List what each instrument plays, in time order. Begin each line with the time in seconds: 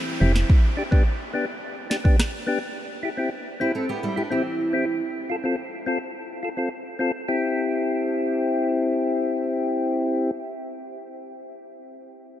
Already playing: steel-string acoustic guitar E3 C4, downlifter
0.20 fm bass F1, tonewheel organ C4 E4 G4
0.36 snare
0.50 kick
0.77 tonewheel organ D4 G4
0.91 tonewheel organ B3 D4 G4, kick
1.33 tonewheel organ B3 D4 G4
1.90 tonewheel organ D4 G4, snare
2.04 tonewheel organ B3 D4 G4, kick
2.20 cross-stick, snare
2.47 tonewheel organ B3 D4 G4
3.03 tonewheel organ E4 G4
3.17 tonewheel organ C4 E4 G4
3.60 tonewheel organ C4 E4 G4, steel-string acoustic guitar E4 C5
3.75 steel-string acoustic guitar C4 A4
3.89 steel-string acoustic guitar B3 G4
4.03 steel-string acoustic guitar G3 E4
4.16 steel-string acoustic guitar D4, tonewheel organ E4 G4
4.30 steel-string acoustic guitar E3 C4, tonewheel organ C4 E4 G4
4.73 tonewheel organ C4 E4 G4
5.30 tonewheel organ F4 A4
5.44 tonewheel organ C4 F4 A4
5.86 tonewheel organ C4 F4 A4
6.43 tonewheel organ F4 A4
6.57 tonewheel organ C4 F4 A4
6.99 tonewheel organ C4 F4 A4
7.28 tonewheel organ C4 E4 G4